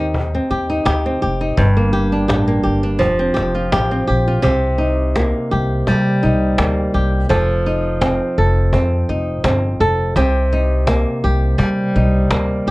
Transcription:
Already playing: D#2 D#3 C4 G4
0.00 D#4
0.14 cajon bass
0.34 C4
0.50 D#2 G4
0.70 D#4
0.85 D2 G4, cajon bass, cajon slap
1.06 C4
1.22 F1 G4
1.41 D#4
1.57 G1 G2, cajon bass
1.77 A#3
1.93 G4
2.12 D4
2.28 A1 G4, cajon bass, cajon slap
2.48 A#3
2.63 G1 G4
2.83 D4
2.99 F1 F3, cajon bass
3.19 C4
3.34 F1 G4, cajon slap
3.55 F4
3.72 A1 G4, cajon bass, cajon slap
3.91 C4
4.07 A#1 G4
4.28 F4
4.42 C2 C3 G4, cajon bass
4.78 D#4
5.16 A#3, cajon bass, cajon slap
5.51 C2 G4
5.87 C3 G3, cajon bass
6.23 C2 D#4
6.58 D2 A#3, cajon bass, cajon slap
6.94 C2 G4
7.29 F1 F3 A4, cajon bass
7.66 D#4
8.01 C4, cajon bass, cajon slap
8.38 F1 A4
8.73 F2 C4, cajon bass
9.09 F1 D#4
9.44 G1 C4, cajon bass, cajon slap
9.80 F1 A4
10.16 C2 C3 G4, cajon bass
10.53 D#4
10.87 A#3, cajon bass, cajon slap
11.24 C2 G4
11.58 C3 G3, cajon bass
11.96 C2 D#4
12.30 D2 A#3, cajon bass, cajon slap
12.67 C2 G4

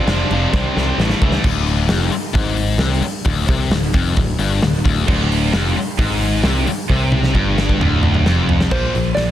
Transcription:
Already playing: D4
0.07 F1 F2 C3 F3, snare, crash
0.31 F1 F2 C3 F3, crash
0.53 C2 C3 G3 C4, kick, snare
0.76 C2 C3 G3 C4, snare
0.98 A1 A2 E3 A3, snare
1.09 snare
1.22 C#2 A2 E3 A3, kick
1.32 snare
1.44 D1 D2, kick, crash
1.67 open hi-hat
1.88 F1 F2, snare, open hi-hat
2.12 muted distorted electric guitar stroke, open hi-hat
2.34 G#1 G#2, kick, open hi-hat
2.57 open hi-hat
2.78 C2 C3, snare, open hi-hat
3.01 muted picked electric bass stroke, muted distorted electric guitar stroke, open hi-hat
3.25 D1 D2, kick, open hi-hat
3.48 C2 C3, kick, open hi-hat
3.70 D1 D2, snare, open hi-hat
3.94 F1 F2, kick, open hi-hat
4.16 D1 D2, kick, open hi-hat
4.39 G1 G2, open hi-hat
4.62 D1 D2, snare, open hi-hat
4.85 D1 D2, kick, open hi-hat
5.07 D1 D2, kick, crash
5.32 open hi-hat
5.53 F1 F2, snare, open hi-hat
5.77 muted distorted electric guitar stroke, open hi-hat
5.98 G#1 G#2, kick, open hi-hat
6.21 open hi-hat
6.43 C2 C3, snare, open hi-hat
6.66 muted picked electric bass stroke, muted distorted electric guitar stroke, open hi-hat
6.89 C2 C3, kick
7.12 high tom
7.23 snare
7.34 G1 G2, kick
7.58 snare
7.69 kick
7.80 D1 D2, mid tom
8.03 mid tom
8.14 mid tom
8.25 F1 F2, snare
8.49 floor tom
8.61 snare
8.71 A#1 A#2 F3 A#3 C5, kick, crash
8.94 A#1 A#2 F3, open hi-hat
9.14 A#1 A#2 D5, snare, open hi-hat
9.19 F3

